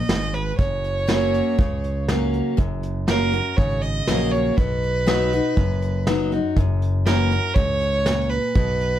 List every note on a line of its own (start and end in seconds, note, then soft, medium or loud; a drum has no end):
0.00 0.36 D#5 medium
0.09 0.51 G#1 medium
0.09 0.57 G#2 medium
0.09 snare loud
0.09 closed hi-hat medium
0.34 0.57 B4 medium
0.34 closed hi-hat medium
0.58 1.41 F#1 medium
0.58 1.53 F#2 medium
0.58 2.04 C#5 medium
0.58 kick loud
0.58 closed hi-hat medium
0.84 closed hi-hat medium
1.07 1.55 F#3 medium
1.07 1.56 A#3 loud
1.07 1.56 C#4 medium
1.07 1.56 F#4 loud
1.07 snare loud
1.07 closed hi-hat medium
1.34 closed hi-hat medium
1.58 2.40 C#2 medium
1.58 2.53 C#3 medium
1.58 kick loud
1.58 closed hi-hat medium
1.84 closed hi-hat medium
2.08 2.56 F#3 medium
2.08 2.56 A#3 medium
2.08 2.56 C#4 medium
2.08 2.56 F#4 medium
2.08 snare loud
2.08 closed hi-hat medium
2.33 closed hi-hat medium
2.57 3.40 F#1 medium
2.57 3.52 F#2 medium
2.57 kick medium
2.57 closed hi-hat medium
2.83 closed hi-hat medium
3.08 3.32 F#3 medium
3.08 3.32 A#3 loud
3.08 3.32 C#4 loud
3.08 3.31 F#4 loud
3.08 3.58 A#4 loud
3.08 snare loud
3.08 closed hi-hat medium
3.32 3.57 C#4 soft
3.32 3.57 F#4 medium
3.32 closed hi-hat medium
3.57 4.00 G#1 medium
3.57 4.53 C#3 medium
3.57 3.83 C#5 medium
3.57 kick loud
3.57 closed hi-hat medium
3.82 4.33 D#5 loud
3.82 closed hi-hat medium
4.07 4.50 A#1 medium
4.07 4.55 F#3 medium
4.07 4.55 A#3 medium
4.07 4.55 C#4 medium
4.07 4.56 F#4 medium
4.07 snare loud
4.07 closed hi-hat medium
4.31 4.58 C#5 medium
4.31 closed hi-hat medium
4.57 5.39 B1 medium
4.57 5.52 B2 medium
4.57 6.06 B4 loud
4.57 kick loud
4.57 closed hi-hat medium
4.83 closed hi-hat medium
5.06 5.31 F#3 medium
5.06 5.31 B3 loud
5.06 5.31 D#4 loud
5.06 5.32 F#4 loud
5.06 snare loud
5.06 closed hi-hat medium
5.33 5.57 D#4 soft
5.33 5.56 F#4 medium
5.33 closed hi-hat medium
5.57 6.39 F#1 medium
5.57 6.52 F#2 medium
5.57 kick loud
5.57 closed hi-hat medium
5.82 closed hi-hat medium
6.07 6.31 F#3 medium
6.07 6.31 B3 medium
6.07 6.31 D#4 medium
6.07 6.30 F#4 medium
6.07 snare loud
6.07 closed hi-hat medium
6.32 6.56 D#4 soft
6.32 6.55 F#4 medium
6.32 closed hi-hat medium
6.56 7.38 F#1 medium
6.56 7.51 F#2 medium
6.56 kick loud
6.56 closed hi-hat medium
6.82 closed hi-hat medium
7.06 7.30 E3 loud
7.06 7.30 A#3 medium
7.06 7.31 C#4 loud
7.06 7.30 F#4 loud
7.06 7.56 A#4 loud
7.06 snare loud
7.06 closed hi-hat medium
7.31 7.56 C#4 soft
7.31 7.55 F#4 medium
7.31 closed hi-hat medium
7.55 8.38 C#2 medium
7.55 8.03 G#2 medium
7.55 8.31 C#5 loud
7.55 kick loud
7.55 closed hi-hat medium
7.81 closed hi-hat medium
8.06 8.53 A#2 medium
8.06 snare loud
8.06 closed hi-hat medium
8.30 8.99 B4 loud
8.30 closed hi-hat soft
8.55 8.99 B1 medium
8.55 8.99 B2 medium
8.55 kick loud
8.55 closed hi-hat medium
8.81 closed hi-hat medium